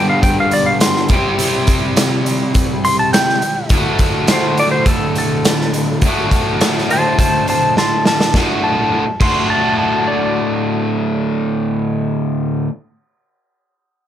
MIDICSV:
0, 0, Header, 1, 4, 480
1, 0, Start_track
1, 0, Tempo, 579710
1, 1155, Time_signature, 4, 2, 24, 8
1, 11655, End_track
2, 0, Start_track
2, 0, Title_t, "Electric slide guitar"
2, 0, Program_c, 0, 29
2, 78, Note_on_c, 0, 77, 72
2, 189, Note_off_c, 0, 77, 0
2, 192, Note_on_c, 0, 79, 72
2, 311, Note_off_c, 0, 79, 0
2, 333, Note_on_c, 0, 77, 91
2, 441, Note_off_c, 0, 77, 0
2, 442, Note_on_c, 0, 74, 81
2, 549, Note_on_c, 0, 77, 78
2, 556, Note_off_c, 0, 74, 0
2, 669, Note_off_c, 0, 77, 0
2, 672, Note_on_c, 0, 84, 90
2, 2077, Note_off_c, 0, 84, 0
2, 2357, Note_on_c, 0, 84, 101
2, 2471, Note_off_c, 0, 84, 0
2, 2479, Note_on_c, 0, 81, 75
2, 2589, Note_off_c, 0, 81, 0
2, 2592, Note_on_c, 0, 79, 104
2, 3056, Note_off_c, 0, 79, 0
2, 3570, Note_on_c, 0, 72, 84
2, 3792, Note_off_c, 0, 72, 0
2, 3804, Note_on_c, 0, 74, 84
2, 3900, Note_off_c, 0, 74, 0
2, 3903, Note_on_c, 0, 72, 85
2, 4022, Note_off_c, 0, 72, 0
2, 4043, Note_on_c, 0, 69, 82
2, 4268, Note_off_c, 0, 69, 0
2, 4291, Note_on_c, 0, 69, 91
2, 5210, Note_off_c, 0, 69, 0
2, 5721, Note_on_c, 0, 72, 80
2, 5737, Note_on_c, 0, 81, 80
2, 5950, Note_off_c, 0, 72, 0
2, 5955, Note_off_c, 0, 81, 0
2, 5960, Note_on_c, 0, 72, 77
2, 5964, Note_on_c, 0, 81, 79
2, 6177, Note_off_c, 0, 72, 0
2, 6188, Note_off_c, 0, 81, 0
2, 6200, Note_on_c, 0, 72, 71
2, 6208, Note_on_c, 0, 81, 85
2, 6417, Note_off_c, 0, 72, 0
2, 6431, Note_off_c, 0, 81, 0
2, 6443, Note_on_c, 0, 81, 72
2, 6447, Note_on_c, 0, 84, 77
2, 6660, Note_off_c, 0, 81, 0
2, 6669, Note_off_c, 0, 84, 0
2, 6682, Note_on_c, 0, 81, 84
2, 6908, Note_off_c, 0, 81, 0
2, 7151, Note_on_c, 0, 81, 82
2, 7616, Note_off_c, 0, 81, 0
2, 7631, Note_on_c, 0, 84, 83
2, 7863, Note_off_c, 0, 84, 0
2, 7866, Note_on_c, 0, 81, 76
2, 8093, Note_off_c, 0, 81, 0
2, 8103, Note_on_c, 0, 81, 76
2, 8339, Note_off_c, 0, 81, 0
2, 8342, Note_on_c, 0, 74, 87
2, 9457, Note_off_c, 0, 74, 0
2, 11655, End_track
3, 0, Start_track
3, 0, Title_t, "Overdriven electric guitar"
3, 0, Program_c, 1, 29
3, 0, Note_on_c, 1, 43, 90
3, 0, Note_on_c, 1, 50, 86
3, 0, Note_on_c, 1, 55, 93
3, 0, Note_on_c, 1, 59, 91
3, 0, Note_on_c, 1, 62, 102
3, 0, Note_on_c, 1, 67, 112
3, 895, Note_off_c, 1, 43, 0
3, 897, Note_off_c, 1, 50, 0
3, 901, Note_off_c, 1, 55, 0
3, 906, Note_off_c, 1, 59, 0
3, 909, Note_off_c, 1, 62, 0
3, 911, Note_off_c, 1, 67, 0
3, 918, Note_on_c, 1, 48, 95
3, 919, Note_on_c, 1, 55, 89
3, 932, Note_on_c, 1, 60, 93
3, 937, Note_on_c, 1, 64, 86
3, 949, Note_on_c, 1, 67, 106
3, 960, Note_on_c, 1, 72, 88
3, 2818, Note_off_c, 1, 48, 0
3, 2818, Note_off_c, 1, 55, 0
3, 2824, Note_off_c, 1, 60, 0
3, 2827, Note_off_c, 1, 64, 0
3, 2833, Note_off_c, 1, 67, 0
3, 2838, Note_off_c, 1, 72, 0
3, 3072, Note_on_c, 1, 38, 85
3, 3089, Note_on_c, 1, 45, 90
3, 3107, Note_on_c, 1, 50, 90
3, 3107, Note_on_c, 1, 57, 94
3, 3124, Note_on_c, 1, 66, 98
3, 4982, Note_off_c, 1, 45, 0
3, 4991, Note_off_c, 1, 38, 0
3, 4994, Note_on_c, 1, 38, 77
3, 5012, Note_on_c, 1, 45, 89
3, 5014, Note_off_c, 1, 50, 0
3, 5018, Note_on_c, 1, 50, 86
3, 5023, Note_off_c, 1, 57, 0
3, 5026, Note_on_c, 1, 57, 104
3, 5036, Note_off_c, 1, 66, 0
3, 5040, Note_on_c, 1, 66, 90
3, 6896, Note_off_c, 1, 38, 0
3, 6906, Note_off_c, 1, 45, 0
3, 6906, Note_on_c, 1, 38, 93
3, 6908, Note_off_c, 1, 50, 0
3, 6913, Note_off_c, 1, 57, 0
3, 6916, Note_on_c, 1, 45, 94
3, 6919, Note_off_c, 1, 66, 0
3, 6927, Note_on_c, 1, 50, 89
3, 6933, Note_on_c, 1, 57, 94
3, 6944, Note_on_c, 1, 66, 91
3, 7484, Note_off_c, 1, 38, 0
3, 7484, Note_off_c, 1, 45, 0
3, 7484, Note_off_c, 1, 50, 0
3, 7484, Note_off_c, 1, 57, 0
3, 7484, Note_off_c, 1, 66, 0
3, 7621, Note_on_c, 1, 45, 88
3, 7622, Note_on_c, 1, 38, 97
3, 7636, Note_on_c, 1, 50, 92
3, 7645, Note_on_c, 1, 57, 98
3, 7651, Note_on_c, 1, 66, 88
3, 10499, Note_off_c, 1, 38, 0
3, 10499, Note_off_c, 1, 45, 0
3, 10499, Note_off_c, 1, 50, 0
3, 10499, Note_off_c, 1, 57, 0
3, 10499, Note_off_c, 1, 66, 0
3, 11655, End_track
4, 0, Start_track
4, 0, Title_t, "Drums"
4, 190, Note_on_c, 9, 36, 109
4, 190, Note_on_c, 9, 42, 84
4, 273, Note_off_c, 9, 36, 0
4, 273, Note_off_c, 9, 42, 0
4, 425, Note_on_c, 9, 42, 69
4, 507, Note_off_c, 9, 42, 0
4, 666, Note_on_c, 9, 42, 98
4, 672, Note_on_c, 9, 38, 112
4, 749, Note_off_c, 9, 42, 0
4, 755, Note_off_c, 9, 38, 0
4, 795, Note_on_c, 9, 38, 30
4, 878, Note_off_c, 9, 38, 0
4, 898, Note_on_c, 9, 42, 71
4, 909, Note_on_c, 9, 36, 107
4, 981, Note_off_c, 9, 42, 0
4, 992, Note_off_c, 9, 36, 0
4, 1148, Note_on_c, 9, 42, 90
4, 1231, Note_off_c, 9, 42, 0
4, 1382, Note_on_c, 9, 42, 75
4, 1390, Note_on_c, 9, 36, 93
4, 1465, Note_off_c, 9, 42, 0
4, 1472, Note_off_c, 9, 36, 0
4, 1626, Note_on_c, 9, 42, 92
4, 1633, Note_on_c, 9, 38, 105
4, 1709, Note_off_c, 9, 42, 0
4, 1716, Note_off_c, 9, 38, 0
4, 1872, Note_on_c, 9, 42, 69
4, 1955, Note_off_c, 9, 42, 0
4, 2107, Note_on_c, 9, 42, 87
4, 2112, Note_on_c, 9, 36, 105
4, 2189, Note_off_c, 9, 42, 0
4, 2195, Note_off_c, 9, 36, 0
4, 2356, Note_on_c, 9, 42, 62
4, 2439, Note_off_c, 9, 42, 0
4, 2595, Note_on_c, 9, 42, 89
4, 2601, Note_on_c, 9, 38, 112
4, 2678, Note_off_c, 9, 42, 0
4, 2684, Note_off_c, 9, 38, 0
4, 2726, Note_on_c, 9, 38, 31
4, 2809, Note_off_c, 9, 38, 0
4, 2832, Note_on_c, 9, 42, 61
4, 2914, Note_off_c, 9, 42, 0
4, 3057, Note_on_c, 9, 42, 76
4, 3065, Note_on_c, 9, 36, 98
4, 3140, Note_off_c, 9, 42, 0
4, 3148, Note_off_c, 9, 36, 0
4, 3301, Note_on_c, 9, 42, 69
4, 3306, Note_on_c, 9, 36, 86
4, 3384, Note_off_c, 9, 42, 0
4, 3389, Note_off_c, 9, 36, 0
4, 3539, Note_on_c, 9, 42, 83
4, 3546, Note_on_c, 9, 38, 104
4, 3622, Note_off_c, 9, 42, 0
4, 3629, Note_off_c, 9, 38, 0
4, 3788, Note_on_c, 9, 42, 66
4, 3871, Note_off_c, 9, 42, 0
4, 4022, Note_on_c, 9, 42, 85
4, 4024, Note_on_c, 9, 36, 102
4, 4105, Note_off_c, 9, 42, 0
4, 4107, Note_off_c, 9, 36, 0
4, 4268, Note_on_c, 9, 42, 64
4, 4351, Note_off_c, 9, 42, 0
4, 4509, Note_on_c, 9, 42, 86
4, 4516, Note_on_c, 9, 38, 114
4, 4592, Note_off_c, 9, 42, 0
4, 4599, Note_off_c, 9, 38, 0
4, 4645, Note_on_c, 9, 38, 27
4, 4727, Note_off_c, 9, 38, 0
4, 4750, Note_on_c, 9, 42, 68
4, 4832, Note_off_c, 9, 42, 0
4, 4981, Note_on_c, 9, 42, 84
4, 4985, Note_on_c, 9, 36, 98
4, 5063, Note_off_c, 9, 42, 0
4, 5068, Note_off_c, 9, 36, 0
4, 5228, Note_on_c, 9, 36, 89
4, 5232, Note_on_c, 9, 42, 66
4, 5311, Note_off_c, 9, 36, 0
4, 5315, Note_off_c, 9, 42, 0
4, 5470, Note_on_c, 9, 42, 86
4, 5476, Note_on_c, 9, 38, 105
4, 5553, Note_off_c, 9, 42, 0
4, 5559, Note_off_c, 9, 38, 0
4, 5612, Note_on_c, 9, 38, 30
4, 5694, Note_off_c, 9, 38, 0
4, 5716, Note_on_c, 9, 42, 69
4, 5799, Note_off_c, 9, 42, 0
4, 5950, Note_on_c, 9, 36, 98
4, 5954, Note_on_c, 9, 42, 88
4, 6033, Note_off_c, 9, 36, 0
4, 6037, Note_off_c, 9, 42, 0
4, 6190, Note_on_c, 9, 42, 61
4, 6273, Note_off_c, 9, 42, 0
4, 6434, Note_on_c, 9, 38, 59
4, 6517, Note_off_c, 9, 38, 0
4, 6669, Note_on_c, 9, 38, 85
4, 6752, Note_off_c, 9, 38, 0
4, 6794, Note_on_c, 9, 38, 79
4, 6876, Note_off_c, 9, 38, 0
4, 6905, Note_on_c, 9, 36, 93
4, 6909, Note_on_c, 9, 38, 81
4, 6988, Note_off_c, 9, 36, 0
4, 6992, Note_off_c, 9, 38, 0
4, 7623, Note_on_c, 9, 36, 101
4, 7625, Note_on_c, 9, 49, 88
4, 7706, Note_off_c, 9, 36, 0
4, 7708, Note_off_c, 9, 49, 0
4, 11655, End_track
0, 0, End_of_file